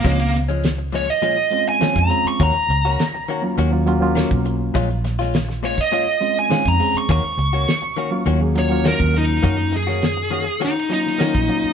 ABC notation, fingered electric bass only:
X:1
M:4/4
L:1/16
Q:1/4=102
K:Ebdor
V:1 name="Fingered electric bass" clef=bass
D,,8 z4 z F,, z2 | E,, z D,,2 z4 E,,4- E,, _C,,3 | B,,,8 z4 z F,, z2 | E,, z D,,2 z4 E,,4- E,, E,,3 |
G,,8 z4 z B,,, z2 |]